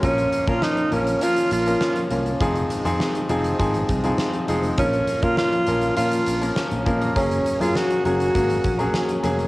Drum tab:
HH |xxxx-xxxxxxx-xxx|xxxx-xxxxxxx-xxx|xxxx-xxxxxxx-xxx|xxxx-xxxxxxx-xxx|
SD |----o-------o---|----o-------o---|----o-------o---|----o-------o---|
BD |o--o------------|o-------o-o-----|o--o----------o-|o-------o-o-----|